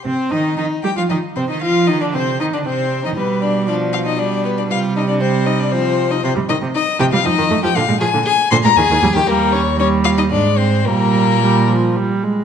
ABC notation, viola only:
X:1
M:3/4
L:1/16
Q:1/4=117
K:Cm
V:1 name="Viola" clef=bass
C2 E2 E2 G F E2 C E | F2 E D C2 E D C3 E | G,4 F,4 G,4 | G,4 G,4 F,4 |
[K:Eb] C, G, E, C, z2 C, G, F, E, =A, F, | D, A, F, D, z2 D, A, E, E, G, E, | G,4 G,4 A,4 | G,4 G,2 F,2 G,2 A,2 |]